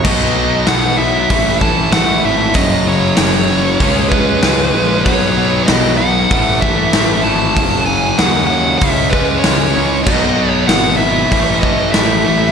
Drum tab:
CC |x-------|--------|--------|--------|
HH |--o-o-o-|o-o-o-o-|o-o-o-o-|o-o-o-o-|
SD |--o---o-|--o---o-|--o---o-|--o---o-|
BD |o---oo--|o---oo--|o---oo--|o---oo--|

CC |x-------|
HH |--o-o-o-|
SD |--o---o-|
BD |o---oo--|